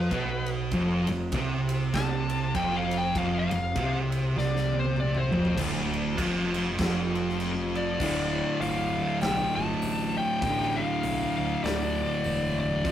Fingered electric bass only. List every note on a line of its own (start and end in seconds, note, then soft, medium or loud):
0.11 0.68 B1 loud
0.72 1.05 F1 loud
1.09 1.32 F1 medium
1.32 1.90 C2 medium
1.94 2.51 C2 medium
2.55 3.12 F1 loud
3.16 3.49 F1 medium
3.51 3.74 F1 medium
3.75 4.33 C2 medium
4.36 5.29 C2 medium
5.32 5.56 F1 medium
5.58 6.15 D1 medium
6.18 6.75 F1 medium
6.79 7.96 F1 loud
8.00 8.38 D1 medium
8.60 8.98 G1 medium
9.22 9.44 B1 medium
9.57 9.73 G1 loud
9.82 10.20 A1 medium
10.42 10.80 A1 loud
11.03 11.25 B1 medium
11.38 11.54 D2 loud
11.63 12.01 D2 loud
12.24 12.85 E1 loud
12.85 12.92 F1 loud